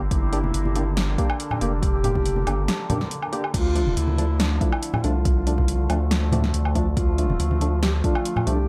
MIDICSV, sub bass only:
0, 0, Header, 1, 2, 480
1, 0, Start_track
1, 0, Key_signature, -1, "minor"
1, 0, Tempo, 428571
1, 125, Time_signature, 4, 2, 24, 8
1, 9725, End_track
2, 0, Start_track
2, 0, Title_t, "Sub bass"
2, 0, Program_c, 0, 38
2, 125, Note_on_c, 0, 31, 101
2, 587, Note_off_c, 0, 31, 0
2, 605, Note_on_c, 0, 31, 98
2, 1307, Note_off_c, 0, 31, 0
2, 1805, Note_on_c, 0, 29, 101
2, 2747, Note_off_c, 0, 29, 0
2, 2764, Note_on_c, 0, 31, 100
2, 3005, Note_off_c, 0, 31, 0
2, 3964, Note_on_c, 0, 38, 99
2, 4426, Note_off_c, 0, 38, 0
2, 4445, Note_on_c, 0, 38, 95
2, 5147, Note_off_c, 0, 38, 0
2, 5644, Note_on_c, 0, 36, 105
2, 6586, Note_off_c, 0, 36, 0
2, 6603, Note_on_c, 0, 38, 100
2, 7306, Note_off_c, 0, 38, 0
2, 7325, Note_on_c, 0, 38, 94
2, 7787, Note_off_c, 0, 38, 0
2, 7803, Note_on_c, 0, 38, 99
2, 8266, Note_off_c, 0, 38, 0
2, 8283, Note_on_c, 0, 38, 100
2, 8986, Note_off_c, 0, 38, 0
2, 9485, Note_on_c, 0, 36, 100
2, 9725, Note_off_c, 0, 36, 0
2, 9725, End_track
0, 0, End_of_file